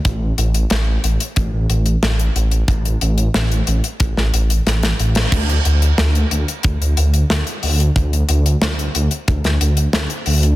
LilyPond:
<<
  \new Staff \with { instrumentName = "Detuned saw bass" } { \clef bass \time 4/4 \key a \phrygian \tempo 4 = 91 a,,8 a,,8 a,,8 a,,16 r16 a,,16 a,,16 a,,8 a,,8 a,,8 | a,,8 a,,8 a,,8 a,,16 r16 a,,16 a,,16 a,,8 a,,8 a,,8 | d,8 d,8 d,8 d,16 r16 d,16 d,16 d,8 d,16 r16 d,8 | d,8 d,8 d,8 d,16 r16 d,16 d,16 d,8 d,16 r16 d,8 | }
  \new DrumStaff \with { instrumentName = "Drums" } \drummode { \time 4/4 <hh bd>8 hh16 hh16 <hh sn>8 hh16 hh16 <hh bd>8 hh16 hh16 <hh sn>16 hh16 hh16 hh16 | <hh bd>16 hh16 hh16 hh16 <hh sn>16 hh16 hh16 hh16 <hh bd>16 sn16 hh16 hh16 <hh sn>16 <hh sn>16 hh16 <hh sn>16 | <cymc hh bd>16 hh16 hh16 hh16 <hh sn>16 hh16 hh16 hh16 <hh bd>16 hh16 hh16 hh16 <hh sn>16 hh16 hho16 hh16 | <hh bd>16 hh16 hh16 hh16 <hh sn>16 hh16 hh16 hh16 <hh bd>16 <hh sn>16 hh16 hh16 <hh sn>16 hh16 hho16 hh16 | }
>>